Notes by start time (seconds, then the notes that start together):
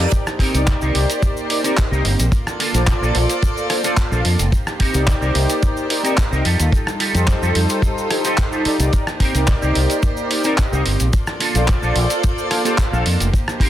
Already playing: G3 D#4 F4 A4, reverse cymbal
0.00 D#4 G4 A#4 D5, closed hi-hat
0.12 A#3 G4 C5, kick, closed hi-hat, cabasa
0.27 cross-stick, cabasa
0.39 C4 D#4 G4 A#4, kick, open hi-hat
0.54 C2 D#4 G4 A#4 D5, closed hi-hat, cabasa
0.67 kick, clap, closed hi-hat, cabasa
0.81 C2 C4 D#4 G4 A#4, cabasa
0.95 C2, open hi-hat
1.09 muted clean electric guitar stroke, closed hi-hat, cabasa
1.22 kick, closed hi-hat, cabasa
1.36 muted clean electric guitar stroke, cabasa
1.50 D#4 G4 A#4 D5, open hi-hat
1.63 C4 D#4 G4 A#4 D5, closed hi-hat, cabasa
1.77 D#4 G4 A#4 D#5, kick, cross-stick, clap, closed hi-hat, cabasa
1.91 C2 C4 D#4 G4 A#4, cabasa
2.05 G1, open hi-hat
2.19 A#1, closed hi-hat, cabasa
2.32 F4 A4 D5, kick, closed hi-hat, cabasa
2.47 cross-stick, cabasa
2.59 A#3 D4 F4 A4, open hi-hat
2.74 A#1 F4 A4 C5 D5, closed hi-hat, cabasa
2.87 kick, clap, closed hi-hat, cabasa
3.01 A#1 A#3 D4 F4 A4, cabasa
3.15 A#1, open hi-hat
3.29 muted clean electric guitar stroke, closed hi-hat, cabasa
3.42 kick, closed hi-hat, cabasa
3.56 muted clean electric guitar stroke, cabasa
3.70 F4 A4 C5 D5, cross-stick, open hi-hat
3.83 A#3 D4 F4 A4 C5 D5, closed hi-hat, cabasa
3.97 F4 A4 C5 F5, kick, clap, closed hi-hat, cabasa
4.11 A#1 A#3 D4 F4 A4, cabasa
4.25 F2, open hi-hat
4.39 F1, closed hi-hat, cabasa
4.52 D#4 G4 C5, kick, closed hi-hat, cabasa
4.67 cross-stick, cabasa
4.79 C4 D#4 G4 A#4, kick, open hi-hat
4.93 C2 D#4 G4 A#4 D5, closed hi-hat, cabasa
5.07 kick, clap, closed hi-hat, cabasa
5.21 C2 C4 D#4 G4 A#4, cabasa
5.35 C2, open hi-hat
5.48 muted clean electric guitar stroke, closed hi-hat, cabasa
5.63 kick, closed hi-hat, cabasa
5.76 muted clean electric guitar stroke, cabasa
5.90 D#4 G4 A#4 D5, open hi-hat
6.03 C4 D#4 G4 A#4 D5, closed hi-hat, cabasa
6.17 D#4 G4 A#4 D#5, kick, cross-stick, clap, closed hi-hat, cabasa
6.31 C2 C4 D#4 G4 A#4, cabasa
6.44 F2 G3 D#4 F4 G4 A4, open hi-hat
6.60 D#2, closed hi-hat, cabasa
6.72 kick, closed hi-hat, cabasa
6.87 cross-stick, cabasa
6.99 D#4 F4 G4 A4, open hi-hat
7.14 F2 D#4 G4 A4 C5, closed hi-hat, cabasa
7.27 kick, clap, closed hi-hat, cabasa
7.41 F2 D#4 F4 G4 A4, cabasa
7.55 F2, open hi-hat
7.69 muted clean electric guitar stroke, closed hi-hat, cabasa
7.82 kick, closed hi-hat, cabasa
7.96 muted clean electric guitar stroke, cabasa
8.10 D#4 G4 A4 C5, cross-stick, open hi-hat
8.24 D#4 F4 G4 A4 C5, closed hi-hat, cabasa
8.37 kick, clap, closed hi-hat, cabasa
8.51 D#4 F4 G4 A4, cabasa
8.65 D#4 G4 A4 D5, muted fingered electric bass stroke, open hi-hat
8.80 C2 D#4 G4 A#4 D5, closed hi-hat, cabasa
8.93 A#3 G4 C5, kick, closed hi-hat, cabasa
9.07 cross-stick, cabasa
9.20 C4 D#4 G4 A#4, kick, open hi-hat
9.35 C2 D#4 G4 A#4 D5, closed hi-hat, cabasa
9.47 kick, clap, closed hi-hat, cabasa
9.62 C2 C4 D#4 G4 A#4, cabasa
9.75 C2, open hi-hat
9.89 muted clean electric guitar stroke, closed hi-hat, cabasa
10.03 kick, closed hi-hat, cabasa
10.17 muted clean electric guitar stroke, cabasa
10.31 D#4 G4 A#4 D5, open hi-hat
10.44 C4 D#4 G4 A#4 D5, closed hi-hat, cabasa
10.58 D#4 G4 A#4 D#5, kick, cross-stick, clap, closed hi-hat, cabasa
10.72 C2 C4 D#4 G4 A#4, cabasa
10.86 G1, open hi-hat
11.00 A#1, closed hi-hat, cabasa
11.13 A#3 F4 A4 D5, kick, closed hi-hat, cabasa
11.27 cross-stick, cabasa
11.40 A#3 D4 F4 A4, open hi-hat
11.55 A#1 F4 A4 C5 D5, closed hi-hat, cabasa
11.68 kick, clap, closed hi-hat, cabasa
11.82 A#1 A#3 D4 F4 A4, cabasa
11.96 A#1, open hi-hat
12.09 muted clean electric guitar stroke, closed hi-hat, cabasa
12.23 kick, closed hi-hat, cabasa
12.37 muted clean electric guitar stroke, cabasa
12.51 F4 A4 C5 D5, cross-stick, open hi-hat
12.64 A#3 D4 F4 G4 A4 C5 D5, closed hi-hat, cabasa
12.78 F4 A4 C5 F5, kick, clap, closed hi-hat, cabasa
12.92 A#1 A#3 D4 F4 A4, cabasa
13.06 F2, open hi-hat
13.20 F1, closed hi-hat, cabasa
13.33 D#4 G4 C5, kick, closed hi-hat, cabasa
13.48 cross-stick, cabasa
13.60 C4 D#4 G4 A#4, kick, open hi-hat